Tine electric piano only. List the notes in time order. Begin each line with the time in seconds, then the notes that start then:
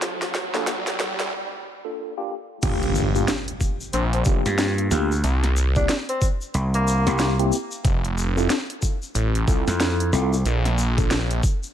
0.54 A#3 D4 F4 A4
1.85 A#3 D4 F4 A4
2.17 A#3 D4 F4 G4
2.63 A#3 D4 F4 G4
3.15 A#3 D4 F4 G4
4.26 A#3 D4 F4 G4
4.91 A#3 D4 F4 G4
5.76 A#3 C4 E4 G4
7.07 A#3 C4 E4 G4
7.39 A#3 C4 E4 G4
8.37 C4 E4 F4 A4
9.48 C4 E4 F4 A4
10.13 C4 E4 F4 A4
10.98 A#3 D4 F4 A4